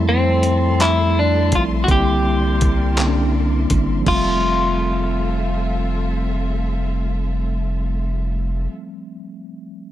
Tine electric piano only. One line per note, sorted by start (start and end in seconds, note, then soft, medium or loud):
0.00 0.47 F3 loud
0.00 0.47 G3 medium
0.00 0.48 A3 medium
0.00 0.48 C4 loud
0.00 0.49 E4 loud
0.79 1.56 F3 medium
0.79 1.57 G3 medium
0.79 1.57 A3 medium
0.79 1.58 C4 medium
1.86 2.65 D3 medium
1.86 2.66 G3 medium
1.86 2.66 A#3 medium
1.86 2.66 C4 medium
1.91 2.67 E4 medium
2.96 3.74 D3 medium
2.96 3.75 G3 medium
2.96 3.75 A#3 medium
2.96 3.76 C4 medium
3.00 3.05 C#4 medium
3.07 3.79 D4 loud
3.99 8.59 F3 medium
4.03 8.64 G3 medium
4.07 8.68 A3 medium
4.12 8.72 C4 medium
4.12 8.76 E5 medium